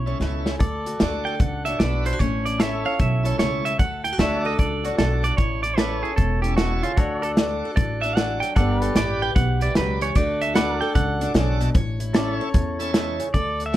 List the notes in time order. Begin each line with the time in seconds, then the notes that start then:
Already playing: B1 E3 E4 C#5
0.06 C#4 E4 A4 C#5
0.20 C#2 B2 E4 A4 C#5, snare
0.46 C#3, snare
0.59 D2 D3 A4 D5, kick, closed hi-hat
0.86 F#4, closed hi-hat
0.99 D2 A3 D4 F#4 A4 D5, snare, closed hi-hat
1.25 A4 G5
1.40 C#2 A2 F#5, kick, closed hi-hat
1.65 D4 F#4 A4 C#5 E5, closed hi-hat
1.79 B1 A3 F#4 A4 B4 D5, snare, closed hi-hat
2.05 E4 C5, closed hi-hat
2.12 F#4
2.19 A1 A2 A3 C#4 E4 C#5, kick, closed hi-hat
2.45 E4 D5, closed hi-hat
2.58 A3 C#4 E4 A4 C#5 E5, snare, closed hi-hat
2.85 C#5 F5
2.99 B1 E3 E5, kick, closed hi-hat
3.23 C#4 E4 A4 C#5, closed hi-hat
3.38 C#2 A3 E4 A4 C#5, snare, closed hi-hat
3.65 E4 E5, closed hi-hat
3.79 D2 D3 A4 F#5, kick, closed hi-hat
4.04 E4 G5, closed hi-hat
4.12 F#4
4.18 D2 A3 D4 F#4 A4 C#5 D5 E5, snare, closed hi-hat
4.40 D5
4.45 A4 D#5
4.58 C#2 A2 D5, kick, closed hi-hat
4.84 D4 F#4 A4 C#5, closed hi-hat
4.97 B1 A3 F#4 A4 D5, snare, closed hi-hat
5.24 F#4 D5, closed hi-hat
5.37 A1 A2 E4 C#5, kick, closed hi-hat
5.63 E4 D5, closed hi-hat
5.77 A3 C#4 E4 A4 B4 C#5 D5, snare, closed hi-hat
6.00 G#4 C#5
6.05 E4
6.16 E1 E3 A4, kick, closed hi-hat
6.42 C#4 E4 G4 A4 C#5, closed hi-hat
6.56 B2 E4 F#4 A4 C#5, snare, closed hi-hat
6.83 C#3 F4, closed hi-hat
6.96 D2 D3 D4 F#4 A4 C#5, kick, closed hi-hat
7.19 A4 D5, closed hi-hat
7.25 F#4
7.36 A3 D4 F#4 A4 D5, snare, closed hi-hat
7.65 A4
7.76 A1 A2 D5, kick, closed hi-hat
8.01 D4 F#4 A4 D5 E5, closed hi-hat
8.15 E3 F#4 A4 D5 F#5, snare, closed hi-hat
8.40 F#3 G5, closed hi-hat
8.56 G1 G3 D4 G4 A4 D5 F#5, kick, closed hi-hat
8.60 B4
8.81 G4 A4 B4, closed hi-hat
8.95 A1 D4 G4 B4 D5, snare, closed hi-hat
9.22 B4 G5
9.36 B1 D3 F#5, kick, closed hi-hat
9.60 G4 B4 D5 E5, closed hi-hat
9.74 C#2 F#3 G4 B4 D5, snare, closed hi-hat
10.01 E3 C#5, closed hi-hat
10.15 D2 D3 A3 D4 F#4 A4 D5, kick, closed hi-hat
10.41 F#4 E5, closed hi-hat
10.54 A3 D4 F#4 A4 B4 D5 F#5, snare, closed hi-hat
10.81 A4 G5
10.95 C#2 A2 F#5, kick, closed hi-hat
11.20 D4 F#4 A4 D5, closed hi-hat
11.34 B1 C#3 F#4 A4 D5, snare, closed hi-hat
11.60 B2, closed hi-hat
11.74 A1 A2 C#5, kick, closed hi-hat
12.00 E4, closed hi-hat
12.13 A3 C#4 E4 A4 C#5 D5, snare, closed hi-hat
12.36 C#5
12.41 C#5
12.54 E2 E3, kick, closed hi-hat
12.79 C#4 E4 A4 C#5 A5, closed hi-hat
12.93 B2 E4 A4 C#5, snare, closed hi-hat
13.20 C#3, closed hi-hat
13.34 D2 D3 A4 D5, kick, closed hi-hat
13.60 F#4, closed hi-hat
13.66 E5
13.72 F#4 A4